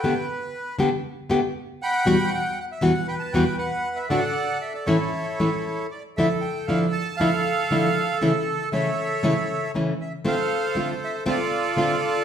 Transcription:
<<
  \new Staff \with { instrumentName = "Bandoneon" } { \time 4/4 \key a \mixolydian \tempo 4 = 118 << { g''8 r2. b''8~ | b''8 g''8 fis''16 e''16 fis''8 g''16 a''16 g''8 fis''8. e''16 | fis''4 e''16 d''16 cis''2 d''8 | \key d \minor e''8 g''8 f''8 a''8 f''2 |
r4 e''2 r8 e''8 | f''4 f''8 e''8 d''2 | } \\ { b'4. r2 <fis'' g''>8~ | <fis'' g''>4. r8 b'4 b'4 | <a' d''>4. <e' a'>2 r8 | a'2 a'2~ |
a'4 <a' cis''>2 r4 | <a' c''>2 <f' a'>2 | } >> }
  \new Staff \with { instrumentName = "Nylon-string guitar" } { \time 4/4 \key a \mixolydian <d a b g'>8 r4 <d a b g'>8 r8 <d a b g'>8 r4 | <e, b, e g b fis'>8 r4 <e, b, e g b fis'>8 r8 <e, b, e g b fis'>8 r4 | <a, d a d' fis'>8 r4 <a, e a cis' e'>8 r8 <a, e a cis' e'>8 r4 | \key d \minor <d f a d' e'>8 r8 <d f a d' e'>8 r8 <d f a d' e'>8 r8 <d f a d' e'>8 r8 |
<cis e a cis' e'>8 r8 <cis e a cis' e'>8 r8 <cis e a cis' e'>8 r8 <cis e a cis' e'>8 r8 | <d a c' f'>8 r8 <d a c' f'>8 r8 <d a c' f'>8 r8 <d a c' f'>8 r8 | }
>>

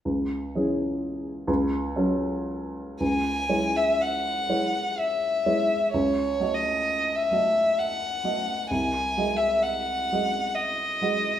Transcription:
<<
  \new Staff \with { instrumentName = "Violin" } { \time 3/4 \key cis \minor \tempo 4 = 64 r2. | gis''8. e''16 fis''4 e''4 | \tuplet 3/2 { cis''4 dis''8~ dis''8 e''4 } fis''4 | gis''8. e''16 fis''4 dis''4 | }
  \new Staff \with { instrumentName = "Grand piano" } { \time 3/4 \key cis \minor cis,8 <e cis' gis'>4 cis,8 <fis cis' a'>4 | cis,8 <gis e' cis''>4 <gis e' cis''>4 <gis e' cis''>8 | cis,8 <a fis' dis''>4 <a fis' dis''>4 <a fis' dis''>8 | bis,,8 <gis fis' dis''>4 <gis fis' dis''>4 <gis fis' dis''>8 | }
>>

